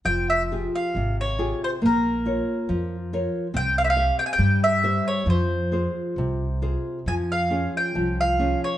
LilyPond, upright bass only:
\new Staff \with { instrumentName = "Upright bass" } { \clef bass \time 2/4 \key f \minor \tempo 4 = 68 f,,4 aes,,4 | bes,,4 f,4 | c,4 g,4 | f,4 c,4 |
f,4 c,4 | }